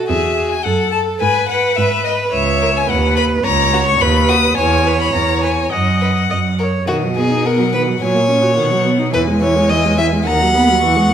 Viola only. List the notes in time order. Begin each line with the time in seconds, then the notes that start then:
Already playing: F#4
0.66 A4
1.22 B4
2.33 C#5
2.89 B4
3.44 C#5
4.01 B4
4.58 C#5
5.72 D#5
6.30 D#5
6.59 C#5
6.89 D#3
7.03 F#3
7.17 B3
7.30 D#4
7.44 B3
7.58 F#3
7.74 D#3
7.87 F#3
8.00 F#3
8.14 A#3
8.28 C#4
8.42 F#4
8.57 D#3
8.71 F#3
8.84 B3
8.99 D#4
9.13 E3
9.27 G#3
9.41 E3
9.55 G#3
9.71 E3
9.85 G#3
9.98 E3
10.11 G#3
10.26 D#3
10.41 F#3
10.55 B3
10.68 F#3
10.82 E3
10.96 G#3
11.10 B3